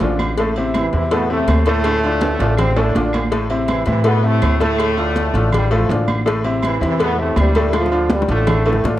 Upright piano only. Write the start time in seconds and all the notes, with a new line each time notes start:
0.02 D3 D4 F4
0.39 A2 A3 A4
0.57 C3 C4 E4
0.93 C3 C4 E4
1.11 A2 A3 A4
1.29 C3 C4 E4
1.66 A2 A3 A4
2.04 D3 D4 F4
2.39 D3 D4 F4
2.76 A2 A3 A4
2.95 D3 D4 F4
3.31 A2 A3 A4
3.50 C3 C4 E4
3.87 C3 C4 E4
4.05 A2 A3 A4
4.23 C3 C4 E4
4.60 A2 A3 A4
4.97 D3 D4 F4
5.33 D3 D4 F4
5.71 A2 A3 A4
5.90 D3 D4 F4
6.26 A2 A3 A4
6.44 C3 C4 E4
6.81 C3 C4 E4
7.00 A2 A3 A4
7.18 C3 C4 E4
7.55 A2 A3 A4
7.91 D3 D4 F4
8.28 D3 D4 F4
8.66 A2 A3 A4
8.85 D3 D4 F4